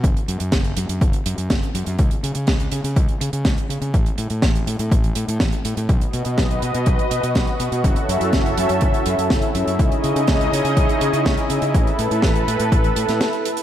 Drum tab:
HH |xxxxxxxxxxxxxxxx|xxxxxxxxxxxxxxxx|xxxxxxxxxxxxxxxx|xxxxxxxxxxxxxxxx|
SD |----o-------o---|----o-------o---|----o-------o---|----o-------o---|
BD |o---o---o---o---|o---o---o---o---|o---o---o---o---|o---o---o---o---|

HH |xxxxxxxxxxxxxxxx|xxxxxxxxxxxxxxxx|xxxxxxxxxxxxxxxx|
SD |----o-------o---|----o-------o---|----o------oo---|
BD |o---o---o---o---|o---o---o---o---|o---o---o-------|